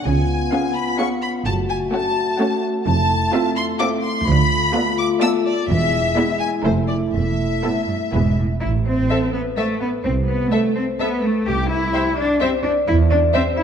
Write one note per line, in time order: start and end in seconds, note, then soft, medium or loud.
0.06 0.42 C#2 medium
0.06 0.42 C#3 medium
0.06 1.44 B3 medium
0.06 1.43 F4 medium
0.06 0.76 G#5 medium
0.52 0.87 B3 medium
0.52 0.87 C#4 medium
0.52 0.87 G#4 soft
0.52 0.87 F5 soft
0.75 0.99 B5 medium
0.99 1.34 B3 soft
0.99 1.34 C#4 medium
0.99 1.34 G#4 soft
0.99 1.34 F5 soft
0.99 1.07 C#6 medium
1.22 1.30 B5 medium
1.45 1.83 F#1 medium
1.45 1.83 F#2 medium
1.45 4.23 A3 medium
1.45 2.84 F#4 medium
1.45 1.53 A5 medium
1.69 1.77 G#5 medium
1.92 2.28 A3 medium
1.92 2.27 C#4 medium
1.92 2.27 F#4 soft
1.92 2.27 F#5 soft
1.92 2.61 A5 medium
2.39 2.74 A3 medium
2.39 2.74 C#4 medium
2.39 2.74 F#4 medium
2.39 2.74 F#5 medium
2.85 3.23 F1 medium
2.85 3.23 F2 medium
2.85 4.27 E4 medium
2.85 3.52 A5 medium
3.33 3.68 C4 medium
3.33 3.68 F4 medium
3.33 3.68 A4 soft
3.33 3.68 E5 soft
3.56 3.64 C6 medium
3.80 4.15 C4 medium
3.80 4.15 F4 medium
3.80 4.15 A4 medium
3.80 4.15 E5 soft
3.80 3.88 D6 medium
4.04 4.26 C6 medium
4.27 4.64 D2 medium
4.27 5.52 A3 medium
4.27 5.52 F4 medium
4.27 4.98 B5 loud
4.74 5.10 B3 medium
4.74 5.09 F4 medium
4.74 5.10 A4 soft
4.74 5.10 D5 soft
4.98 5.06 D6 medium
5.21 5.57 B3 medium
5.21 5.57 F4 medium
5.21 5.57 A4 medium
5.21 5.57 D5 medium
5.21 5.29 E6 medium
5.45 5.69 D5 medium
5.69 6.07 E1 medium
5.69 6.07 E2 medium
5.69 6.63 G#3 medium
5.69 8.34 E4 medium
5.69 6.40 E5 medium
6.17 6.53 B3 medium
6.17 6.53 E4 medium
6.17 6.53 G#4 soft
6.17 6.53 D5 soft
6.40 6.48 G#5 medium
6.65 7.04 F1 medium
6.65 7.04 F2 medium
6.65 7.01 A3 medium
6.65 8.13 A3 medium
6.65 7.01 E4 soft
6.65 7.01 A4 soft
6.65 7.01 C5 soft
6.65 6.73 C5 medium
6.89 6.97 D5 soft
7.14 7.53 E1 soft
7.14 7.53 E2 medium
7.14 8.35 E5 medium
7.63 7.72 A2 soft
7.63 8.00 B3 soft
7.63 8.00 E4 soft
7.63 8.01 A4 soft
7.88 7.96 G2 soft
8.13 8.52 E1 soft
8.13 8.37 G#2 soft
8.13 8.38 G#3 soft
8.13 8.50 B3 soft
8.13 8.50 E4 soft
8.13 8.50 G#4 soft
8.13 8.50 B4 soft
8.38 8.46 A2 soft
8.61 9.02 A1 soft
8.61 8.70 E4 medium
8.61 8.84 E5 soft
8.86 9.32 C4 medium
8.86 9.30 C5 soft
9.10 9.18 A4 soft
9.10 9.26 A4 soft
9.10 9.26 C5 soft
9.10 9.18 E5 soft
9.10 9.18 A5 soft
9.33 9.41 B3 medium
9.33 9.55 B4 medium
9.57 9.80 A3 medium
9.57 9.79 A4 medium
9.57 9.65 A4 soft
9.57 9.74 A4 soft
9.57 9.73 C5 soft
9.57 9.65 E5 soft
9.57 9.65 A5 soft
9.80 9.88 B3 medium
9.80 10.03 B4 soft
10.04 10.44 C2 soft
10.04 10.12 C4 medium
10.04 10.26 C5 soft
10.28 10.51 B3 medium
10.28 10.50 B4 soft
10.51 10.76 A3 medium
10.51 10.74 A4 medium
10.51 10.60 A4 soft
10.51 10.68 A4 soft
10.51 10.69 C5 soft
10.51 10.60 E5 soft
10.51 10.59 A5 soft
10.76 10.84 C4 medium
10.76 10.98 C5 soft
10.98 11.22 B3 medium
10.98 11.15 A4 soft
10.98 11.08 A4 soft
10.98 11.21 B4 medium
10.98 11.14 C5 soft
10.98 11.08 E5 soft
10.98 11.07 A5 soft
11.22 11.47 A3 medium
11.22 11.45 A4 soft
11.46 11.86 C2 medium
11.46 11.70 G4 medium
11.46 11.68 G5 soft
11.69 12.16 E4 medium
11.69 12.14 E5 medium
11.93 12.09 G4 soft
11.93 12.09 C5 soft
11.93 12.02 C5 soft
11.93 12.01 E5 soft
11.93 12.02 G5 soft
12.17 12.40 D4 medium
12.17 12.39 D5 medium
12.40 12.48 C4 medium
12.40 12.57 G4 soft
12.40 12.48 C5 soft
12.40 12.57 C5 soft
12.40 12.63 C5 medium
12.40 12.48 E5 soft
12.40 12.49 G5 soft
12.64 12.72 D4 medium
12.64 12.86 D5 medium
12.87 13.26 E2 medium
12.87 12.95 E4 medium
12.87 13.10 E5 medium
13.11 13.19 D4 medium
13.11 13.32 D5 medium
13.34 13.42 C4 medium
13.34 13.50 G4 soft
13.34 13.42 C5 soft
13.34 13.56 C5 medium
13.34 13.51 C5 soft
13.34 13.42 E5 soft
13.34 13.42 G5 soft
13.57 13.63 E4 medium
13.57 13.63 E5 medium